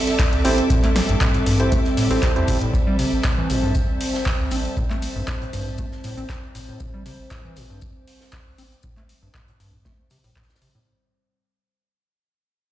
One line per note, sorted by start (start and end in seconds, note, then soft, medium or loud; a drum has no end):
0.00 10.83 G3 medium
0.00 10.83 C4 medium
0.00 2.72 A4 medium
0.00 10.87 A4 medium
0.00 10.87 E5 medium
0.00 3.37 D6 medium
0.07 snare medium
0.07 closed hi-hat soft
0.19 kick loud
0.19 snare loud
0.19 clap loud
0.19 closed hi-hat medium
0.19 shaker medium
0.33 0.40 C2 medium
0.33 closed hi-hat soft
0.45 0.61 A1 loud
0.45 0.49 C4 medium
0.45 0.58 E4 loud
0.45 0.58 G4 medium
0.45 0.58 A4 medium
0.45 0.58 C5 loud
0.45 open hi-hat loud
0.45 shaker medium
0.58 closed hi-hat soft
0.70 1.01 A1 loud
0.70 0.77 A2 medium
0.70 kick loud
0.70 closed hi-hat medium
0.70 shaker medium
0.83 0.90 A3 medium
0.83 clap soft
0.83 closed hi-hat soft
0.96 snare medium
0.96 open hi-hat loud
0.96 shaker medium
1.09 1.16 A1 medium
1.09 1.16 G2 medium
1.09 closed hi-hat soft
1.21 1.25 A2 loud
1.21 kick loud
1.21 snare loud
1.21 clap loud
1.21 closed hi-hat medium
1.21 shaker medium
1.34 1.38 A2 medium
1.34 closed hi-hat soft
1.46 1.77 A1 medium
1.46 1.61 G2 loud
1.46 open hi-hat loud
1.46 shaker medium
1.60 1.64 A2 medium
1.60 1.72 E4 medium
1.60 1.72 G4 medium
1.60 1.72 A4 medium
1.60 1.72 C5 loud
1.60 closed hi-hat soft
1.72 1.79 A3 medium
1.72 kick loud
1.72 closed hi-hat medium
1.72 shaker medium
1.84 snare soft
1.97 2.08 A2 loud
1.97 open hi-hat loud
1.97 shaker medium
2.11 2.18 A1 medium
2.11 2.17 C4 medium
2.11 2.31 E4 medium
2.11 2.31 G4 medium
2.11 2.31 A4 medium
2.11 2.31 C5 medium
2.11 closed hi-hat soft
2.11 open hi-hat medium
2.22 kick loud
2.22 snare loud
2.22 clap loud
2.22 closed hi-hat medium
2.22 shaker medium
2.36 2.44 E2 loud
2.36 2.57 E4 medium
2.36 2.57 G4 medium
2.36 2.57 A4 medium
2.36 2.57 C5 medium
2.36 closed hi-hat soft
2.48 2.64 G1 medium
2.48 2.52 A2 medium
2.48 kick medium
2.48 open hi-hat loud
2.48 shaker medium
2.61 2.71 A2 medium
2.61 closed hi-hat soft
2.73 3.04 A1 medium
2.73 2.78 A2 medium
2.73 10.86 C5 medium
2.73 kick loud
2.73 shaker medium
2.87 2.97 G3 medium
2.99 3.06 C3 medium
2.99 open hi-hat medium
2.99 shaker medium
3.12 3.20 A1 loud
3.24 3.35 A2 medium
3.24 kick loud
3.24 snare loud
3.24 clap loud
3.24 shaker medium
3.34 3.51 E3 medium
3.34 7.44 A5 medium
3.50 3.81 A1 medium
3.50 3.57 A2 medium
3.50 open hi-hat loud
3.50 shaker medium
3.63 3.73 G2 medium
3.75 kick loud
3.75 shaker medium
3.89 3.96 A1 medium
4.01 open hi-hat loud
4.01 open hi-hat medium
4.14 snare medium
4.26 kick loud
4.26 snare loud
4.26 clap loud
4.26 shaker medium
4.39 4.47 C2 medium
4.51 4.68 A1 loud
4.51 4.56 C4 medium
4.51 open hi-hat loud
4.51 shaker medium
4.65 closed hi-hat soft
4.77 5.08 A1 loud
4.77 4.84 A2 medium
4.77 kick loud
4.77 shaker medium
4.90 4.97 A3 medium
4.90 clap soft
4.90 closed hi-hat soft
5.02 open hi-hat medium
5.02 shaker medium
5.16 5.23 A1 loud
5.16 5.22 G2 medium
5.28 5.32 A2 medium
5.28 kick loud
5.28 snare medium
5.28 clap loud
5.28 shaker medium
5.41 5.45 A2 medium
5.41 closed hi-hat soft
5.53 5.84 A1 medium
5.53 5.68 G2 loud
5.53 open hi-hat medium
5.53 shaker medium
5.67 5.71 A2 medium
5.78 5.86 A3 medium
5.78 kick loud
5.78 shaker medium
5.92 snare soft
6.04 6.15 A2 loud
6.04 open hi-hat loud
6.04 shaker medium
6.17 6.25 A1 medium
6.17 6.24 C4 medium
6.17 closed hi-hat soft
6.30 kick loud
6.30 snare loud
6.30 clap loud
6.30 shaker medium
6.55 6.71 A1 medium
6.55 6.59 A2 medium
6.55 open hi-hat loud
6.55 shaker medium
6.68 6.78 A2 medium
6.80 7.11 A1 medium
6.80 6.85 A2 medium
6.80 kick loud
6.80 shaker medium
6.94 7.04 G3 medium
7.06 7.13 C3 medium
7.06 open hi-hat medium
7.06 shaker medium
7.19 7.27 A1 loud
7.31 7.42 A2 medium
7.31 kick loud
7.31 snare loud
7.31 clap loud
7.31 shaker medium
7.41 7.58 E3 medium
7.41 10.90 D6 medium
7.56 7.87 A1 medium
7.56 7.64 A2 medium
7.56 open hi-hat medium
7.56 shaker medium
7.70 7.80 G2 medium
7.82 kick loud
7.82 shaker medium
7.95 8.03 A1 medium
8.07 open hi-hat medium
8.21 snare soft
8.32 kick loud
8.32 snare loud
8.32 clap loud
8.32 shaker medium
8.46 8.54 C2 medium
8.58 8.75 A1 medium
8.58 8.63 C4 medium
8.58 open hi-hat medium
8.58 shaker medium
8.72 closed hi-hat soft
8.83 9.15 A1 medium
8.83 8.91 A2 medium
8.83 kick loud
8.83 shaker medium
8.97 9.04 A3 medium
8.97 clap soft
8.97 closed hi-hat soft
9.09 open hi-hat medium
9.09 shaker medium
9.22 9.30 A1 medium
9.22 9.29 G2 medium
9.34 9.39 A2 medium
9.34 kick loud
9.34 snare medium
9.34 clap loud
9.34 shaker medium
9.48 9.52 A2 medium
9.48 closed hi-hat soft
9.60 9.91 A1 medium
9.60 9.75 G2 loud
9.60 open hi-hat medium
9.60 shaker medium
9.73 9.77 A2 medium
9.73 kick medium
9.85 9.93 A3 medium
9.85 kick loud
9.85 snare loud
9.85 shaker medium
10.10 10.18 C3 medium
10.10 open hi-hat loud
10.10 shaker medium
10.24 10.32 A1 medium
10.24 10.31 A2 medium
10.24 open hi-hat medium
10.36 10.44 A2 medium
10.36 kick loud
10.36 snare medium
10.36 clap loud
10.36 shaker medium
10.43 snare medium
10.43 shaker medium
10.49 snare medium
10.49 shaker medium
10.55 snare medium
10.55 shaker medium
10.61 10.70 A1 medium
10.61 10.69 C3 medium
10.61 open hi-hat medium
10.61 shaker medium
10.75 10.79 A2 medium
10.75 10.83 A2 medium